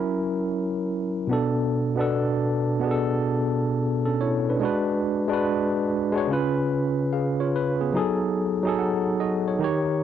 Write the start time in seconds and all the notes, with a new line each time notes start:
Already playing: F#3 C#4 E4 A#4
1.27 B2 B3 D4
1.33 A4
1.95 B2 B3 D4
2.01 A4
2.79 B2 B3 D4
2.85 G#4
2.91 A4
4.05 C#4 A4
4.21 E4 C#5
4.49 D4 B4
4.60 G#3 D4 F#4
4.65 B4
5.28 G#3 D4 F#4
5.33 B4
6.12 G#3 D4 F#4
6.18 C#5
6.27 C#3 C#4 F4
6.33 B4
7.13 G#4 F5
7.40 F4 C#5
7.56 B4
7.81 B3 G#4
7.93 F#3 D#4 G#4
7.99 A4
8.63 F#3 D#4 G#4
8.69 A4
8.78 A4 F#5
9.20 F#4 D#5
9.48 C#5
9.59 D#3 D#4 G4
9.64 C#5